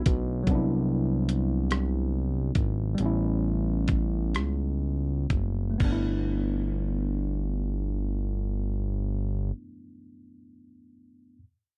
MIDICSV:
0, 0, Header, 1, 4, 480
1, 0, Start_track
1, 0, Key_signature, 1, "major"
1, 0, Tempo, 835655
1, 269, Time_signature, 6, 3, 24, 8
1, 1716, Tempo, 914634
1, 2676, Tempo, 990099
1, 3156, Tempo, 1020408
1, 5962, End_track
2, 0, Start_track
2, 0, Title_t, "Tine electric piano"
2, 0, Program_c, 0, 4
2, 0, Control_c, 0, 64, 127
2, 0, Note_on_c, 0, 57, 67
2, 0, Note_on_c, 0, 59, 58
2, 0, Note_on_c, 0, 62, 63
2, 0, Note_on_c, 0, 64, 77
2, 234, Note_off_c, 0, 57, 0
2, 245, Note_off_c, 0, 59, 0
2, 249, Note_on_c, 0, 54, 66
2, 255, Note_off_c, 0, 62, 0
2, 265, Note_off_c, 0, 64, 0
2, 273, Note_on_c, 0, 59, 61
2, 276, Control_c, 0, 64, 0
2, 294, Note_on_c, 0, 62, 65
2, 316, Note_on_c, 0, 64, 72
2, 383, Control_c, 0, 64, 127
2, 1683, Note_off_c, 0, 54, 0
2, 1692, Note_on_c, 0, 55, 65
2, 1695, Note_off_c, 0, 59, 0
2, 1705, Note_off_c, 0, 62, 0
2, 1715, Note_on_c, 0, 59, 58
2, 1717, Note_off_c, 0, 64, 0
2, 1724, Control_c, 0, 64, 0
2, 1734, Note_on_c, 0, 61, 61
2, 1752, Note_on_c, 0, 64, 71
2, 1808, Control_c, 0, 64, 127
2, 3107, Note_on_c, 0, 57, 64
2, 3127, Note_off_c, 0, 55, 0
2, 3136, Note_off_c, 0, 59, 0
2, 3143, Note_on_c, 0, 59, 58
2, 3145, Note_off_c, 0, 61, 0
2, 3153, Note_off_c, 0, 64, 0
2, 3163, Control_c, 0, 64, 0
2, 3174, Note_on_c, 0, 62, 58
2, 3210, Note_on_c, 0, 64, 66
2, 3249, Control_c, 0, 64, 127
2, 4852, Note_off_c, 0, 57, 0
2, 4887, Note_off_c, 0, 59, 0
2, 4918, Note_off_c, 0, 62, 0
2, 4953, Note_off_c, 0, 64, 0
2, 5779, Control_c, 0, 64, 0
2, 5962, End_track
3, 0, Start_track
3, 0, Title_t, "Analog synth bass"
3, 0, Program_c, 1, 38
3, 38, Note_on_c, 1, 35, 104
3, 248, Note_off_c, 1, 35, 0
3, 272, Note_on_c, 1, 36, 95
3, 1445, Note_off_c, 1, 36, 0
3, 1472, Note_on_c, 1, 32, 85
3, 1696, Note_off_c, 1, 32, 0
3, 1720, Note_on_c, 1, 33, 97
3, 2429, Note_on_c, 1, 37, 72
3, 2437, Note_off_c, 1, 33, 0
3, 2894, Note_off_c, 1, 37, 0
3, 2913, Note_on_c, 1, 30, 81
3, 3137, Note_off_c, 1, 30, 0
3, 3157, Note_on_c, 1, 31, 84
3, 4901, Note_off_c, 1, 31, 0
3, 5962, End_track
4, 0, Start_track
4, 0, Title_t, "Drums"
4, 33, Note_on_c, 9, 42, 76
4, 35, Note_on_c, 9, 36, 103
4, 90, Note_off_c, 9, 42, 0
4, 93, Note_off_c, 9, 36, 0
4, 270, Note_on_c, 9, 36, 85
4, 271, Note_on_c, 9, 42, 59
4, 327, Note_off_c, 9, 36, 0
4, 328, Note_off_c, 9, 42, 0
4, 740, Note_on_c, 9, 42, 67
4, 797, Note_off_c, 9, 42, 0
4, 980, Note_on_c, 9, 42, 59
4, 987, Note_on_c, 9, 37, 89
4, 1038, Note_off_c, 9, 42, 0
4, 1045, Note_off_c, 9, 37, 0
4, 1465, Note_on_c, 9, 42, 60
4, 1467, Note_on_c, 9, 36, 85
4, 1522, Note_off_c, 9, 42, 0
4, 1525, Note_off_c, 9, 36, 0
4, 1712, Note_on_c, 9, 42, 62
4, 1765, Note_off_c, 9, 42, 0
4, 2183, Note_on_c, 9, 42, 59
4, 2188, Note_on_c, 9, 36, 70
4, 2235, Note_off_c, 9, 42, 0
4, 2241, Note_off_c, 9, 36, 0
4, 2429, Note_on_c, 9, 42, 56
4, 2435, Note_on_c, 9, 37, 81
4, 2481, Note_off_c, 9, 42, 0
4, 2488, Note_off_c, 9, 37, 0
4, 2910, Note_on_c, 9, 42, 57
4, 2911, Note_on_c, 9, 36, 80
4, 2959, Note_off_c, 9, 42, 0
4, 2960, Note_off_c, 9, 36, 0
4, 3152, Note_on_c, 9, 49, 64
4, 3154, Note_on_c, 9, 36, 80
4, 3199, Note_off_c, 9, 49, 0
4, 3202, Note_off_c, 9, 36, 0
4, 5962, End_track
0, 0, End_of_file